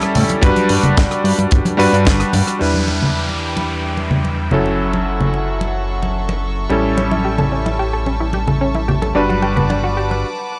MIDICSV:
0, 0, Header, 1, 7, 480
1, 0, Start_track
1, 0, Tempo, 545455
1, 377, Time_signature, 4, 2, 24, 8
1, 9323, End_track
2, 0, Start_track
2, 0, Title_t, "Violin section"
2, 0, Program_c, 0, 48
2, 2297, Note_on_c, 0, 71, 71
2, 2298, Note_on_c, 0, 86, 76
2, 2300, Note_on_c, 0, 76, 63
2, 2300, Note_on_c, 0, 79, 64
2, 3960, Note_off_c, 0, 71, 0
2, 3961, Note_off_c, 0, 86, 0
2, 3962, Note_off_c, 0, 79, 0
2, 3973, Note_on_c, 0, 69, 68
2, 3973, Note_on_c, 0, 78, 63
2, 3975, Note_on_c, 0, 85, 76
2, 5876, Note_off_c, 0, 78, 0
2, 5901, Note_on_c, 0, 81, 64
2, 8020, Note_off_c, 0, 69, 0
2, 8021, Note_off_c, 0, 85, 0
2, 8023, Note_off_c, 0, 76, 0
2, 8049, Note_on_c, 0, 78, 68
2, 8051, Note_on_c, 0, 71, 74
2, 8051, Note_on_c, 0, 86, 80
2, 9323, Note_off_c, 0, 71, 0
2, 9323, Note_off_c, 0, 78, 0
2, 9323, Note_off_c, 0, 81, 0
2, 9323, Note_off_c, 0, 86, 0
2, 9323, End_track
3, 0, Start_track
3, 0, Title_t, "Synth arpeggio sound"
3, 0, Program_c, 1, 84
3, 6138, Note_on_c, 1, 61, 77
3, 6216, Note_off_c, 1, 61, 0
3, 6261, Note_on_c, 1, 64, 73
3, 6336, Note_off_c, 1, 64, 0
3, 6378, Note_on_c, 1, 67, 73
3, 6456, Note_off_c, 1, 67, 0
3, 6498, Note_on_c, 1, 69, 70
3, 6610, Note_off_c, 1, 69, 0
3, 6618, Note_on_c, 1, 61, 78
3, 6697, Note_off_c, 1, 61, 0
3, 6740, Note_on_c, 1, 64, 68
3, 6816, Note_off_c, 1, 64, 0
3, 6858, Note_on_c, 1, 67, 74
3, 6973, Note_off_c, 1, 67, 0
3, 6981, Note_on_c, 1, 69, 72
3, 7056, Note_off_c, 1, 69, 0
3, 7098, Note_on_c, 1, 61, 77
3, 7176, Note_off_c, 1, 61, 0
3, 7219, Note_on_c, 1, 64, 73
3, 7295, Note_off_c, 1, 64, 0
3, 7337, Note_on_c, 1, 67, 73
3, 7416, Note_off_c, 1, 67, 0
3, 7459, Note_on_c, 1, 69, 73
3, 7571, Note_off_c, 1, 69, 0
3, 7578, Note_on_c, 1, 61, 78
3, 7656, Note_off_c, 1, 61, 0
3, 7701, Note_on_c, 1, 64, 70
3, 7776, Note_off_c, 1, 64, 0
3, 7816, Note_on_c, 1, 67, 70
3, 7932, Note_off_c, 1, 67, 0
3, 7938, Note_on_c, 1, 69, 69
3, 8015, Note_off_c, 1, 69, 0
3, 8058, Note_on_c, 1, 62, 79
3, 8136, Note_off_c, 1, 62, 0
3, 8179, Note_on_c, 1, 66, 71
3, 8255, Note_off_c, 1, 66, 0
3, 8294, Note_on_c, 1, 67, 71
3, 8375, Note_off_c, 1, 67, 0
3, 8416, Note_on_c, 1, 71, 71
3, 8529, Note_off_c, 1, 71, 0
3, 8536, Note_on_c, 1, 62, 77
3, 8615, Note_off_c, 1, 62, 0
3, 8657, Note_on_c, 1, 66, 70
3, 8734, Note_off_c, 1, 66, 0
3, 8774, Note_on_c, 1, 67, 72
3, 8892, Note_off_c, 1, 67, 0
3, 8898, Note_on_c, 1, 71, 71
3, 8974, Note_off_c, 1, 71, 0
3, 9323, End_track
4, 0, Start_track
4, 0, Title_t, "Electric grand piano"
4, 0, Program_c, 2, 2
4, 0, Note_on_c, 2, 55, 93
4, 0, Note_on_c, 2, 61, 82
4, 0, Note_on_c, 2, 64, 84
4, 0, Note_on_c, 2, 69, 101
4, 342, Note_off_c, 2, 55, 0
4, 344, Note_off_c, 2, 61, 0
4, 348, Note_off_c, 2, 64, 0
4, 351, Note_off_c, 2, 69, 0
4, 364, Note_on_c, 2, 55, 94
4, 370, Note_on_c, 2, 62, 86
4, 376, Note_on_c, 2, 66, 85
4, 379, Note_on_c, 2, 71, 104
4, 1542, Note_off_c, 2, 55, 0
4, 1545, Note_off_c, 2, 62, 0
4, 1548, Note_off_c, 2, 66, 0
4, 1549, Note_off_c, 2, 71, 0
4, 1559, Note_on_c, 2, 55, 94
4, 1565, Note_on_c, 2, 62, 84
4, 1572, Note_on_c, 2, 66, 81
4, 1576, Note_on_c, 2, 71, 100
4, 2259, Note_off_c, 2, 55, 0
4, 2262, Note_off_c, 2, 62, 0
4, 2266, Note_off_c, 2, 66, 0
4, 2268, Note_off_c, 2, 71, 0
4, 2281, Note_on_c, 2, 55, 66
4, 2290, Note_on_c, 2, 62, 59
4, 2295, Note_on_c, 2, 64, 61
4, 2300, Note_on_c, 2, 71, 74
4, 3940, Note_off_c, 2, 55, 0
4, 3945, Note_off_c, 2, 62, 0
4, 3947, Note_off_c, 2, 64, 0
4, 3950, Note_off_c, 2, 71, 0
4, 3973, Note_on_c, 2, 54, 68
4, 3978, Note_on_c, 2, 61, 64
4, 3984, Note_on_c, 2, 64, 63
4, 3991, Note_on_c, 2, 69, 76
4, 5866, Note_off_c, 2, 54, 0
4, 5869, Note_off_c, 2, 61, 0
4, 5872, Note_off_c, 2, 64, 0
4, 5875, Note_off_c, 2, 69, 0
4, 5891, Note_on_c, 2, 55, 70
4, 5899, Note_on_c, 2, 61, 65
4, 5904, Note_on_c, 2, 64, 64
4, 5909, Note_on_c, 2, 69, 77
4, 8026, Note_off_c, 2, 55, 0
4, 8030, Note_off_c, 2, 61, 0
4, 8032, Note_off_c, 2, 64, 0
4, 8035, Note_off_c, 2, 69, 0
4, 8050, Note_on_c, 2, 55, 72
4, 8055, Note_on_c, 2, 62, 63
4, 8060, Note_on_c, 2, 66, 66
4, 8066, Note_on_c, 2, 71, 78
4, 9013, Note_off_c, 2, 55, 0
4, 9016, Note_off_c, 2, 62, 0
4, 9018, Note_off_c, 2, 66, 0
4, 9021, Note_off_c, 2, 71, 0
4, 9323, End_track
5, 0, Start_track
5, 0, Title_t, "Analog synth bass"
5, 0, Program_c, 3, 38
5, 136, Note_on_c, 3, 45, 88
5, 212, Note_off_c, 3, 45, 0
5, 375, Note_on_c, 3, 31, 96
5, 451, Note_off_c, 3, 31, 0
5, 614, Note_on_c, 3, 43, 95
5, 691, Note_off_c, 3, 43, 0
5, 735, Note_on_c, 3, 31, 41
5, 831, Note_off_c, 3, 31, 0
5, 859, Note_on_c, 3, 31, 81
5, 933, Note_off_c, 3, 31, 0
5, 1093, Note_on_c, 3, 43, 98
5, 1170, Note_off_c, 3, 43, 0
5, 1216, Note_on_c, 3, 43, 81
5, 1290, Note_off_c, 3, 43, 0
5, 1338, Note_on_c, 3, 31, 88
5, 1413, Note_off_c, 3, 31, 0
5, 1455, Note_on_c, 3, 43, 42
5, 1551, Note_off_c, 3, 43, 0
5, 1574, Note_on_c, 3, 43, 93
5, 1651, Note_off_c, 3, 43, 0
5, 1699, Note_on_c, 3, 43, 95
5, 1820, Note_on_c, 3, 31, 88
5, 1833, Note_off_c, 3, 43, 0
5, 1968, Note_off_c, 3, 31, 0
5, 2058, Note_on_c, 3, 43, 85
5, 2133, Note_off_c, 3, 43, 0
5, 2299, Note_on_c, 3, 40, 79
5, 3954, Note_off_c, 3, 40, 0
5, 3977, Note_on_c, 3, 30, 84
5, 5873, Note_off_c, 3, 30, 0
5, 5898, Note_on_c, 3, 33, 85
5, 8034, Note_off_c, 3, 33, 0
5, 8056, Note_on_c, 3, 31, 84
5, 9016, Note_off_c, 3, 31, 0
5, 9323, End_track
6, 0, Start_track
6, 0, Title_t, "Downlifter"
6, 0, Program_c, 4, 103
6, 2294, Note_on_c, 4, 60, 63
6, 6135, Note_off_c, 4, 60, 0
6, 9323, End_track
7, 0, Start_track
7, 0, Title_t, "Drums"
7, 11, Note_on_c, 9, 62, 47
7, 16, Note_on_c, 9, 42, 59
7, 25, Note_on_c, 9, 37, 72
7, 99, Note_off_c, 9, 62, 0
7, 104, Note_off_c, 9, 42, 0
7, 113, Note_off_c, 9, 37, 0
7, 133, Note_on_c, 9, 46, 103
7, 137, Note_on_c, 9, 64, 73
7, 221, Note_off_c, 9, 46, 0
7, 225, Note_off_c, 9, 64, 0
7, 257, Note_on_c, 9, 42, 59
7, 264, Note_on_c, 9, 62, 81
7, 345, Note_off_c, 9, 42, 0
7, 352, Note_off_c, 9, 62, 0
7, 374, Note_on_c, 9, 42, 72
7, 376, Note_on_c, 9, 36, 110
7, 462, Note_off_c, 9, 42, 0
7, 464, Note_off_c, 9, 36, 0
7, 495, Note_on_c, 9, 42, 53
7, 497, Note_on_c, 9, 63, 73
7, 583, Note_off_c, 9, 42, 0
7, 585, Note_off_c, 9, 63, 0
7, 608, Note_on_c, 9, 46, 105
7, 619, Note_on_c, 9, 62, 49
7, 696, Note_off_c, 9, 46, 0
7, 707, Note_off_c, 9, 62, 0
7, 734, Note_on_c, 9, 42, 52
7, 734, Note_on_c, 9, 64, 82
7, 739, Note_on_c, 9, 63, 58
7, 822, Note_off_c, 9, 42, 0
7, 822, Note_off_c, 9, 64, 0
7, 827, Note_off_c, 9, 63, 0
7, 854, Note_on_c, 9, 62, 83
7, 858, Note_on_c, 9, 36, 104
7, 859, Note_on_c, 9, 42, 77
7, 860, Note_on_c, 9, 38, 117
7, 942, Note_off_c, 9, 62, 0
7, 946, Note_off_c, 9, 36, 0
7, 947, Note_off_c, 9, 42, 0
7, 948, Note_off_c, 9, 38, 0
7, 979, Note_on_c, 9, 37, 60
7, 983, Note_on_c, 9, 42, 52
7, 1067, Note_off_c, 9, 37, 0
7, 1071, Note_off_c, 9, 42, 0
7, 1100, Note_on_c, 9, 46, 112
7, 1188, Note_off_c, 9, 46, 0
7, 1220, Note_on_c, 9, 42, 54
7, 1221, Note_on_c, 9, 62, 52
7, 1308, Note_off_c, 9, 42, 0
7, 1309, Note_off_c, 9, 62, 0
7, 1329, Note_on_c, 9, 42, 76
7, 1338, Note_on_c, 9, 36, 98
7, 1417, Note_off_c, 9, 42, 0
7, 1426, Note_off_c, 9, 36, 0
7, 1454, Note_on_c, 9, 63, 90
7, 1459, Note_on_c, 9, 62, 84
7, 1460, Note_on_c, 9, 42, 56
7, 1542, Note_off_c, 9, 63, 0
7, 1547, Note_off_c, 9, 62, 0
7, 1548, Note_off_c, 9, 42, 0
7, 1581, Note_on_c, 9, 46, 105
7, 1669, Note_off_c, 9, 46, 0
7, 1708, Note_on_c, 9, 42, 53
7, 1796, Note_off_c, 9, 42, 0
7, 1806, Note_on_c, 9, 62, 51
7, 1819, Note_on_c, 9, 36, 90
7, 1819, Note_on_c, 9, 38, 114
7, 1821, Note_on_c, 9, 42, 81
7, 1894, Note_off_c, 9, 62, 0
7, 1907, Note_off_c, 9, 36, 0
7, 1907, Note_off_c, 9, 38, 0
7, 1909, Note_off_c, 9, 42, 0
7, 1936, Note_on_c, 9, 37, 78
7, 1940, Note_on_c, 9, 42, 60
7, 2024, Note_off_c, 9, 37, 0
7, 2028, Note_off_c, 9, 42, 0
7, 2051, Note_on_c, 9, 63, 52
7, 2052, Note_on_c, 9, 62, 75
7, 2055, Note_on_c, 9, 46, 106
7, 2139, Note_off_c, 9, 63, 0
7, 2140, Note_off_c, 9, 62, 0
7, 2143, Note_off_c, 9, 46, 0
7, 2177, Note_on_c, 9, 37, 53
7, 2180, Note_on_c, 9, 42, 59
7, 2265, Note_off_c, 9, 37, 0
7, 2268, Note_off_c, 9, 42, 0
7, 2295, Note_on_c, 9, 62, 45
7, 2383, Note_off_c, 9, 62, 0
7, 2412, Note_on_c, 9, 63, 75
7, 2500, Note_off_c, 9, 63, 0
7, 2534, Note_on_c, 9, 62, 65
7, 2622, Note_off_c, 9, 62, 0
7, 2654, Note_on_c, 9, 63, 57
7, 2663, Note_on_c, 9, 64, 75
7, 2742, Note_off_c, 9, 63, 0
7, 2751, Note_off_c, 9, 64, 0
7, 2893, Note_on_c, 9, 62, 45
7, 2981, Note_off_c, 9, 62, 0
7, 3139, Note_on_c, 9, 62, 76
7, 3227, Note_off_c, 9, 62, 0
7, 3497, Note_on_c, 9, 62, 46
7, 3585, Note_off_c, 9, 62, 0
7, 3616, Note_on_c, 9, 64, 70
7, 3704, Note_off_c, 9, 64, 0
7, 3736, Note_on_c, 9, 62, 70
7, 3824, Note_off_c, 9, 62, 0
7, 3970, Note_on_c, 9, 64, 71
7, 4058, Note_off_c, 9, 64, 0
7, 4098, Note_on_c, 9, 62, 46
7, 4186, Note_off_c, 9, 62, 0
7, 4341, Note_on_c, 9, 62, 68
7, 4344, Note_on_c, 9, 63, 76
7, 4429, Note_off_c, 9, 62, 0
7, 4432, Note_off_c, 9, 63, 0
7, 4581, Note_on_c, 9, 64, 72
7, 4669, Note_off_c, 9, 64, 0
7, 4697, Note_on_c, 9, 62, 43
7, 4785, Note_off_c, 9, 62, 0
7, 4937, Note_on_c, 9, 62, 65
7, 5025, Note_off_c, 9, 62, 0
7, 5302, Note_on_c, 9, 62, 44
7, 5303, Note_on_c, 9, 63, 79
7, 5390, Note_off_c, 9, 62, 0
7, 5391, Note_off_c, 9, 63, 0
7, 5534, Note_on_c, 9, 62, 73
7, 5622, Note_off_c, 9, 62, 0
7, 5898, Note_on_c, 9, 62, 43
7, 5986, Note_off_c, 9, 62, 0
7, 6138, Note_on_c, 9, 62, 73
7, 6226, Note_off_c, 9, 62, 0
7, 6260, Note_on_c, 9, 63, 73
7, 6348, Note_off_c, 9, 63, 0
7, 6497, Note_on_c, 9, 63, 53
7, 6498, Note_on_c, 9, 62, 45
7, 6502, Note_on_c, 9, 64, 75
7, 6585, Note_off_c, 9, 63, 0
7, 6586, Note_off_c, 9, 62, 0
7, 6590, Note_off_c, 9, 64, 0
7, 6741, Note_on_c, 9, 62, 63
7, 6829, Note_off_c, 9, 62, 0
7, 7095, Note_on_c, 9, 62, 44
7, 7183, Note_off_c, 9, 62, 0
7, 7331, Note_on_c, 9, 62, 63
7, 7419, Note_off_c, 9, 62, 0
7, 7458, Note_on_c, 9, 64, 66
7, 7546, Note_off_c, 9, 64, 0
7, 7695, Note_on_c, 9, 62, 44
7, 7783, Note_off_c, 9, 62, 0
7, 7821, Note_on_c, 9, 64, 74
7, 7909, Note_off_c, 9, 64, 0
7, 7940, Note_on_c, 9, 62, 66
7, 8028, Note_off_c, 9, 62, 0
7, 8186, Note_on_c, 9, 63, 68
7, 8274, Note_off_c, 9, 63, 0
7, 8292, Note_on_c, 9, 62, 46
7, 8380, Note_off_c, 9, 62, 0
7, 8422, Note_on_c, 9, 64, 77
7, 8510, Note_off_c, 9, 64, 0
7, 8536, Note_on_c, 9, 62, 69
7, 8624, Note_off_c, 9, 62, 0
7, 8898, Note_on_c, 9, 62, 43
7, 8986, Note_off_c, 9, 62, 0
7, 9323, End_track
0, 0, End_of_file